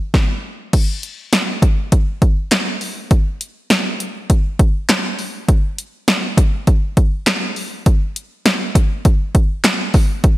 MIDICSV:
0, 0, Header, 1, 2, 480
1, 0, Start_track
1, 0, Tempo, 594059
1, 592, Time_signature, 4, 2, 24, 8
1, 8385, End_track
2, 0, Start_track
2, 0, Title_t, "Drums"
2, 113, Note_on_c, 9, 36, 106
2, 113, Note_on_c, 9, 38, 88
2, 193, Note_off_c, 9, 36, 0
2, 194, Note_off_c, 9, 38, 0
2, 592, Note_on_c, 9, 36, 112
2, 592, Note_on_c, 9, 42, 78
2, 592, Note_on_c, 9, 49, 101
2, 673, Note_off_c, 9, 36, 0
2, 673, Note_off_c, 9, 42, 0
2, 673, Note_off_c, 9, 49, 0
2, 834, Note_on_c, 9, 42, 77
2, 915, Note_off_c, 9, 42, 0
2, 1071, Note_on_c, 9, 42, 81
2, 1072, Note_on_c, 9, 38, 118
2, 1152, Note_off_c, 9, 42, 0
2, 1153, Note_off_c, 9, 38, 0
2, 1311, Note_on_c, 9, 36, 101
2, 1314, Note_on_c, 9, 42, 78
2, 1392, Note_off_c, 9, 36, 0
2, 1395, Note_off_c, 9, 42, 0
2, 1552, Note_on_c, 9, 42, 71
2, 1553, Note_on_c, 9, 36, 90
2, 1633, Note_off_c, 9, 42, 0
2, 1634, Note_off_c, 9, 36, 0
2, 1792, Note_on_c, 9, 36, 103
2, 1792, Note_on_c, 9, 42, 65
2, 1873, Note_off_c, 9, 36, 0
2, 1873, Note_off_c, 9, 42, 0
2, 2031, Note_on_c, 9, 42, 83
2, 2033, Note_on_c, 9, 38, 115
2, 2033, Note_on_c, 9, 39, 97
2, 2112, Note_off_c, 9, 42, 0
2, 2114, Note_off_c, 9, 38, 0
2, 2114, Note_off_c, 9, 39, 0
2, 2271, Note_on_c, 9, 46, 72
2, 2352, Note_off_c, 9, 46, 0
2, 2511, Note_on_c, 9, 42, 76
2, 2512, Note_on_c, 9, 36, 109
2, 2592, Note_off_c, 9, 42, 0
2, 2593, Note_off_c, 9, 36, 0
2, 2754, Note_on_c, 9, 42, 78
2, 2835, Note_off_c, 9, 42, 0
2, 2991, Note_on_c, 9, 38, 117
2, 2991, Note_on_c, 9, 42, 77
2, 3072, Note_off_c, 9, 38, 0
2, 3072, Note_off_c, 9, 42, 0
2, 3234, Note_on_c, 9, 42, 79
2, 3314, Note_off_c, 9, 42, 0
2, 3472, Note_on_c, 9, 42, 70
2, 3473, Note_on_c, 9, 36, 90
2, 3553, Note_off_c, 9, 42, 0
2, 3554, Note_off_c, 9, 36, 0
2, 3712, Note_on_c, 9, 36, 106
2, 3712, Note_on_c, 9, 42, 68
2, 3793, Note_off_c, 9, 36, 0
2, 3793, Note_off_c, 9, 42, 0
2, 3952, Note_on_c, 9, 42, 86
2, 3954, Note_on_c, 9, 38, 115
2, 3954, Note_on_c, 9, 39, 97
2, 4032, Note_off_c, 9, 42, 0
2, 4035, Note_off_c, 9, 38, 0
2, 4035, Note_off_c, 9, 39, 0
2, 4191, Note_on_c, 9, 46, 71
2, 4271, Note_off_c, 9, 46, 0
2, 4432, Note_on_c, 9, 36, 109
2, 4432, Note_on_c, 9, 42, 80
2, 4513, Note_off_c, 9, 36, 0
2, 4513, Note_off_c, 9, 42, 0
2, 4674, Note_on_c, 9, 42, 78
2, 4755, Note_off_c, 9, 42, 0
2, 4911, Note_on_c, 9, 42, 80
2, 4912, Note_on_c, 9, 38, 119
2, 4992, Note_off_c, 9, 38, 0
2, 4992, Note_off_c, 9, 42, 0
2, 5151, Note_on_c, 9, 36, 102
2, 5153, Note_on_c, 9, 42, 77
2, 5231, Note_off_c, 9, 36, 0
2, 5234, Note_off_c, 9, 42, 0
2, 5391, Note_on_c, 9, 42, 69
2, 5393, Note_on_c, 9, 36, 89
2, 5472, Note_off_c, 9, 42, 0
2, 5473, Note_off_c, 9, 36, 0
2, 5632, Note_on_c, 9, 36, 103
2, 5632, Note_on_c, 9, 42, 68
2, 5712, Note_off_c, 9, 42, 0
2, 5713, Note_off_c, 9, 36, 0
2, 5871, Note_on_c, 9, 42, 87
2, 5873, Note_on_c, 9, 38, 111
2, 5873, Note_on_c, 9, 39, 97
2, 5951, Note_off_c, 9, 42, 0
2, 5954, Note_off_c, 9, 38, 0
2, 5954, Note_off_c, 9, 39, 0
2, 6111, Note_on_c, 9, 46, 69
2, 6191, Note_off_c, 9, 46, 0
2, 6352, Note_on_c, 9, 42, 77
2, 6353, Note_on_c, 9, 36, 108
2, 6433, Note_off_c, 9, 36, 0
2, 6433, Note_off_c, 9, 42, 0
2, 6595, Note_on_c, 9, 42, 79
2, 6676, Note_off_c, 9, 42, 0
2, 6832, Note_on_c, 9, 42, 83
2, 6833, Note_on_c, 9, 38, 120
2, 6913, Note_off_c, 9, 38, 0
2, 6913, Note_off_c, 9, 42, 0
2, 7072, Note_on_c, 9, 36, 98
2, 7074, Note_on_c, 9, 42, 79
2, 7152, Note_off_c, 9, 36, 0
2, 7155, Note_off_c, 9, 42, 0
2, 7312, Note_on_c, 9, 42, 70
2, 7314, Note_on_c, 9, 36, 89
2, 7393, Note_off_c, 9, 42, 0
2, 7394, Note_off_c, 9, 36, 0
2, 7552, Note_on_c, 9, 42, 67
2, 7553, Note_on_c, 9, 36, 105
2, 7633, Note_off_c, 9, 42, 0
2, 7634, Note_off_c, 9, 36, 0
2, 7790, Note_on_c, 9, 42, 86
2, 7792, Note_on_c, 9, 38, 116
2, 7792, Note_on_c, 9, 39, 94
2, 7871, Note_off_c, 9, 42, 0
2, 7873, Note_off_c, 9, 38, 0
2, 7873, Note_off_c, 9, 39, 0
2, 8030, Note_on_c, 9, 46, 69
2, 8033, Note_on_c, 9, 36, 97
2, 8111, Note_off_c, 9, 46, 0
2, 8114, Note_off_c, 9, 36, 0
2, 8272, Note_on_c, 9, 42, 77
2, 8273, Note_on_c, 9, 36, 108
2, 8353, Note_off_c, 9, 42, 0
2, 8354, Note_off_c, 9, 36, 0
2, 8385, End_track
0, 0, End_of_file